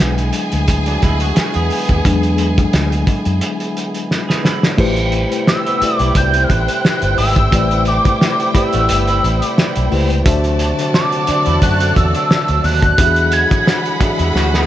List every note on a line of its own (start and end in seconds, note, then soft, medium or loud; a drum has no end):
0.00 0.30 B1 medium
0.00 4.75 D3 medium
0.00 2.05 F#3 medium
0.00 2.06 G#3 soft
0.00 4.75 G#3 medium
0.00 0.15 B3 medium
0.00 4.75 B3 medium
0.00 2.06 D4 medium
0.00 4.75 E4 medium
0.00 0.15 G#4 medium
0.00 4.41 G#4 loud
0.00 4.41 G#5 loud
0.00 snare loud
0.18 closed hi-hat soft
0.33 closed hi-hat medium
0.52 0.96 D2 medium
0.52 closed hi-hat medium
0.68 kick medium
0.68 closed hi-hat medium
0.86 1.02 F#3 medium
0.86 1.02 D4 medium
0.86 closed hi-hat medium
1.02 1.32 D2 loud
1.02 1.21 G#3 medium
1.02 1.20 E4 medium
1.02 kick medium
1.02 snare soft
1.02 closed hi-hat medium
1.20 1.54 F#4 medium
1.20 closed hi-hat medium
1.36 muted fingered electric bass stroke soft
1.36 snare loud
1.36 closed hi-hat medium
1.54 1.69 E2 medium
1.54 2.54 B3 medium
1.54 2.54 G#4 medium
1.54 closed hi-hat medium
1.70 open hi-hat medium
1.89 2.03 D#2 medium
1.89 kick medium
1.89 closed hi-hat soft
2.05 2.64 E2 medium
2.05 4.74 F#3 medium
2.05 4.75 G#3 medium
2.05 4.75 D4 medium
2.05 kick loud
2.05 closed hi-hat loud
2.23 closed hi-hat soft
2.38 closed hi-hat medium
2.58 kick loud
2.58 closed hi-hat medium
2.73 3.03 D2 loud
2.73 snare loud
2.73 closed hi-hat loud
2.92 closed hi-hat soft
3.07 kick medium
3.07 closed hi-hat medium
3.25 3.40 F#2 medium
3.25 closed hi-hat medium
3.41 closed hi-hat medium
3.60 closed hi-hat medium
3.77 closed hi-hat medium
3.94 closed hi-hat medium
4.11 snare medium
4.29 4.44 B3 medium
4.29 4.44 G#4 medium
4.29 snare medium
4.45 4.63 G#3 medium
4.45 4.62 E4 medium
4.45 snare medium
4.63 4.96 F#3 medium
4.63 4.96 D4 medium
4.63 snare medium
4.78 5.24 A1 loud
4.78 12.95 C3 medium
4.78 10.22 G3 medium
4.78 5.19 A3 loud
4.78 12.95 A3 medium
4.78 5.19 E4 medium
4.78 10.21 E4 medium
4.78 10.22 E4 medium
4.78 5.19 G4 loud
4.78 5.20 B4 loud
4.78 10.21 C5 medium
4.78 5.20 C5 loud
4.78 10.21 G5 loud
4.78 kick loud
4.78 crash loud
4.97 closed hi-hat medium
5.12 closed hi-hat medium
5.30 5.70 A3 medium
5.30 5.71 E4 medium
5.30 5.71 G4 medium
5.30 5.71 B4 medium
5.30 5.72 C5 medium
5.30 closed hi-hat medium
5.47 5.96 E6 loud
5.47 snare loud
5.66 5.81 B3 medium
5.66 5.81 G4 medium
5.66 closed hi-hat soft
5.80 6.88 A3 medium
5.80 5.99 A3 medium
5.80 6.88 E4 medium
5.80 5.99 F#4 medium
5.80 6.89 G4 medium
5.80 6.89 B4 medium
5.80 6.90 D5 medium
5.80 muted fingered electric bass stroke medium
5.80 closed hi-hat medium
5.96 6.13 B1 medium
5.96 6.15 E4 medium
5.96 6.18 D6 loud
5.96 closed hi-hat medium
6.01 6.15 G3 medium
6.15 6.45 C2 loud
6.15 6.33 F#3 medium
6.15 6.33 D4 medium
6.15 6.45 G6 loud
6.15 kick medium
6.15 closed hi-hat loud
6.34 7.33 E3 medium
6.34 7.33 C4 medium
6.34 closed hi-hat medium
6.44 6.52 F6 medium
6.50 6.66 A1 loud
6.50 7.17 F#6 loud
6.50 kick medium
6.50 closed hi-hat medium
6.68 closed hi-hat medium
6.85 snare loud
7.02 7.16 G1 medium
7.02 closed hi-hat medium
7.18 7.48 G#1 loud
7.18 7.82 E6 loud
7.18 open hi-hat medium
7.36 kick loud
7.36 closed hi-hat medium
7.51 7.98 A1 loud
7.51 8.33 A3 loud
7.51 8.33 E4 medium
7.51 8.33 G4 medium
7.51 8.34 B4 medium
7.51 8.34 D5 loud
7.51 kick loud
7.51 closed hi-hat loud
7.71 closed hi-hat soft
7.85 8.51 D6 medium
7.85 closed hi-hat medium
8.05 kick loud
8.05 closed hi-hat medium
8.21 snare loud
8.40 closed hi-hat medium
8.54 8.72 G3 medium
8.54 9.62 A3 medium
8.54 9.62 E4 medium
8.54 8.72 E4 medium
8.54 9.62 G4 medium
8.54 9.63 B4 medium
8.54 9.63 D5 medium
8.54 9.46 E6 medium
8.54 muted fingered electric bass stroke medium
8.54 kick loud
8.54 closed hi-hat medium
8.73 8.87 A1 medium
8.73 8.89 A3 medium
8.73 8.88 F#4 medium
8.73 closed hi-hat medium
8.89 9.19 G1 medium
8.89 9.07 B3 medium
8.89 9.07 G4 medium
8.89 closed hi-hat medium
9.07 10.07 G3 medium
9.07 10.06 E4 medium
9.07 closed hi-hat medium
9.24 9.40 A1 loud
9.24 closed hi-hat medium
9.42 9.88 D6 medium
9.42 closed hi-hat medium
9.58 snare loud
9.76 9.90 B1 medium
9.76 closed hi-hat medium
9.91 10.21 C#2 loud
9.91 10.18 A3 medium
9.91 10.19 E4 medium
9.91 10.19 G4 medium
9.91 10.19 B4 medium
9.91 10.20 C5 loud
9.91 open hi-hat medium
10.10 closed hi-hat medium
10.24 10.71 D2 loud
10.24 10.66 D3 loud
10.24 14.66 F#3 medium
10.24 10.66 D4 loud
10.24 12.97 D4 medium
10.24 12.95 F#4 medium
10.24 10.67 F#4 loud
10.24 10.67 C5 loud
10.24 12.95 D5 medium
10.24 10.67 E5 loud
10.24 12.95 A5 loud
10.24 kick loud
10.24 closed hi-hat loud
10.44 closed hi-hat medium
10.59 closed hi-hat medium
10.78 11.18 D3 medium
10.78 11.18 D4 medium
10.78 11.19 F#4 medium
10.78 11.19 C5 medium
10.78 11.19 E5 medium
10.78 closed hi-hat medium
10.94 11.59 D6 medium
10.94 snare loud
11.12 closed hi-hat soft
11.27 12.35 D3 medium
11.27 11.46 F#3 medium
11.27 11.46 D4 medium
11.27 12.36 D4 medium
11.27 12.36 F#4 medium
11.27 12.36 C5 medium
11.27 12.37 D5 medium
11.27 muted fingered electric bass stroke medium
11.27 closed hi-hat medium
11.46 11.60 E2 medium
11.46 11.61 E4 medium
11.46 closed hi-hat soft
11.62 11.92 F#2 loud
11.62 11.80 A3 medium
11.62 11.79 F#4 medium
11.62 11.98 F#6 loud
11.62 kick medium
11.62 closed hi-hat medium
11.80 12.13 C4 medium
11.80 12.13 A4 medium
11.80 closed hi-hat medium
11.96 12.13 E2 loud
11.96 12.66 E6 loud
11.96 kick loud
11.96 closed hi-hat medium
12.14 12.95 F#3 medium
12.14 12.95 D4 medium
12.14 closed hi-hat medium
12.31 snare loud
12.48 12.63 D2 medium
12.48 closed hi-hat medium
12.64 12.94 D#2 medium
12.64 13.33 F#6 loud
12.64 open hi-hat medium
12.82 kick medium
12.82 closed hi-hat soft
12.98 13.44 E2 loud
12.98 14.66 D3 medium
12.98 13.79 E3 loud
12.98 14.66 G#3 medium
12.98 13.80 D4 medium
12.98 14.66 E4 medium
12.98 13.80 F#4 medium
12.98 13.07 G4 medium
12.98 14.66 G#4 medium
12.98 13.81 E5 loud
12.98 14.66 F#5 medium
12.98 14.66 B5 loud
12.98 kick loud
12.98 closed hi-hat loud
13.07 13.84 G#4 medium
13.16 closed hi-hat medium
13.32 13.97 G#6 loud
13.32 closed hi-hat medium
13.51 kick loud
13.51 closed hi-hat medium
13.67 snare loud
13.86 closed hi-hat soft
14.00 14.66 E3 medium
14.00 14.19 F#3 medium
14.00 14.66 D4 medium
14.00 14.19 D4 medium
14.00 14.66 F#4 medium
14.00 14.66 G#4 medium
14.00 14.66 E5 medium
14.00 muted fingered electric bass stroke soft
14.00 kick loud
14.00 closed hi-hat medium
14.19 14.33 E2 medium
14.19 14.35 G#3 medium
14.19 14.35 E4 medium
14.19 closed hi-hat medium
14.35 14.66 D2 loud
14.35 14.53 F#4 medium
14.35 snare medium
14.54 14.66 B3 medium
14.54 14.66 G#4 medium
14.54 snare medium